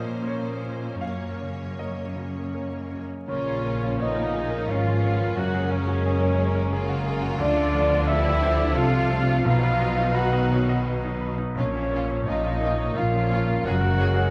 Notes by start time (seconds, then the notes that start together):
Already playing: A#2 F3 A#3 C#4 F4 A#4 C5 D#5 F5 C6
0.27 A#4 C#5
0.63 C#4 F4
1.01 F#2 C#5 F5
1.40 C#3 C#4
1.79 C#4 A#4 C#5 D#5
2.16 C#3 F#4
2.54 A#4 C#5
2.91 C#4 F#4
3.28 A#1 A#2 C#3 F3 A#3 C#4 F4 C#5
3.32 A#4
3.46 C#5
3.65 C#4 F4 A#4
3.83 F4 A#4
3.99 B3 C#4 D#4 F4 C#5 D#5
4.16 A#4 F5
4.33 A#3 G#4 A#5
4.51 A#4
4.67 G#1 G#2 C#4 F4 C#5 F5
4.86 F3 F4
5.02 B3 C#5
5.20 F3 F4
5.34 F#1 F#2 G#3 A#3 C#4 F#4 F#5
5.53 A#3 G#4
5.71 C#4 G#4 A#4 C#5
5.88 F#4 A#4
6.05 A#3 C#4 G#4
6.21 A#4 G#5
6.39 A#3 G#4 A#5
6.55 A#4
6.72 A#3 C#4 F4 G#4
6.89 C#3 F#4
7.06 A#3 G#4
7.22 C#3 F#4
7.38 D2 D3 F3 A3 D4 F4 A4 D5
7.57 A3 A4
7.72 F3 B3 D5
7.90 F4 D5
8.07 E4 G4 A4 E5
8.24 D5 A5
8.41 D4 C5 D6
8.58 A4 D5
8.74 C2 C3 A3 F4 A4 F5
8.93 D4 F4
9.09 A3 A4
9.28 D4 F4
9.45 B1 B2 B3 D#4 F4 B4 F5
9.63 B3 B4
9.80 D#4 D#5
9.97 D#4 D#5
10.14 D#3 F#4 B4 F#5
10.33 D#5
10.52 C#5 D#6
10.69 B4 D#5
10.86 D#4 B4
11.05 F#3 D#4
11.21 B3 B4
11.38 F#3 D#4
11.55 A#1 A#2 C#4 F4 C#5
11.59 F3 A#4
11.74 C#4 C#5
11.91 C#4 F4
11.96 F4
12.07 C#4 C#5
12.25 A#1 A#2 C#4 D#4 F4 C#5 D#5
12.30 F4
12.44 F4 F5
12.61 C#4 D#4 C#6
12.65 F4
12.78 C#5
12.95 A#1 A#2 C#4 F4 F5
12.99 F4
13.12 F3 C#4
13.31 C#4 F4 C#5
13.48 F3 F4
13.64 F#1 F#2 G#3 A#3 C#4 F#4 G#4 F#5
13.81 A#3 A#4
13.98 A#3 C#4 G#4 C#5
14.14 G#4 C#5